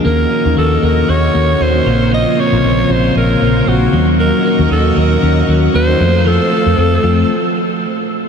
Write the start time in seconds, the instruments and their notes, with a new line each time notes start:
Already playing: clean electric guitar F3 D4
0.04 fingered electric bass D#2, tine electric piano D#3 A#3 C#4 F#4, clean electric guitar A#3, string machine A#3 D#5 F#5 C#6, alto saxophone A#4
0.31 clean electric guitar C#4
0.44 fingered electric bass D#2, tine electric piano D#3 A#3 C#4 D#4
0.57 fingered electric bass D#2, clean electric guitar F#4, alto saxophone A4
0.82 fingered electric bass D#2, tine electric piano D#3 A#3 C#4 A4, clean electric guitar A#3, alto saxophone A#4
1.08 fingered electric bass D#2, clean electric guitar F#4, alto saxophone C#5
1.34 fingered electric bass D#2, tine electric piano D#3 A#3 C#4 F#4, clean electric guitar A#3
1.60 fingered electric bass D#2, clean electric guitar C#4, alto saxophone C5
1.74 tine electric piano D#3 A#3 C#4 F#4
1.86 fingered electric bass A#1, tine electric piano C#3 A#3 C4 F4, clean electric guitar F3, string machine A#4 F5 C6
2.12 clean electric guitar F3, alto saxophone D#5
2.38 clean electric guitar C4, alto saxophone C#5
2.52 fingered electric bass A#1, tine electric piano C3 C#3 A#3 F4
2.63 fingered electric bass A#1, clean electric guitar C#4
2.89 fingered electric bass A#1, tine electric piano C#3 A#3 C4 F4, clean electric guitar F3, alto saxophone C5
3.15 fingered electric bass A#1, clean electric guitar C#4, alto saxophone A#4
3.41 fingered electric bass A#1, tine electric piano C#3 A#3 F4 C5, clean electric guitar F3
3.67 fingered electric bass A#1, clean electric guitar C4, alto saxophone F#4
3.80 tine electric piano C#3 A#3 C4 D#4
3.92 fingered electric bass D#2, tine electric piano D#3 A#3 C#4 F#4, clean electric guitar F#3, string machine D#5 F#5 C#6
4.19 clean electric guitar F#3, alto saxophone A#4
4.45 clean electric guitar A#3
4.58 fingered electric bass D#2, tine electric piano D#3 A#3 C#4 F#4
4.71 fingered electric bass D#2, clean electric guitar C#4, alto saxophone A4
4.96 fingered electric bass D#2, tine electric piano D#3 A#3 C#4 F#4, clean electric guitar F#3, alto saxophone A#4
5.22 fingered electric bass D#2, clean electric guitar C#4
5.47 fingered electric bass D#2, tine electric piano D#3 A#3 C#4 F#4, clean electric guitar F#3
5.74 fingered electric bass D#2, clean electric guitar A#3, alto saxophone C5
5.88 tine electric piano D#3 A#3 C#4 F#4
5.99 fingered electric bass F2, tine electric piano F3 A3 C4 A4, clean electric guitar F3, string machine A4 C5 F5 C6
6.25 clean electric guitar F3, alto saxophone A4
6.51 clean electric guitar A3
6.65 fingered electric bass F2, tine electric piano F3 A3 C4 A4
6.77 fingered electric bass F2, clean electric guitar C4
7.02 fingered electric bass F2, tine electric piano F3 A3 C4 F4, clean electric guitar F3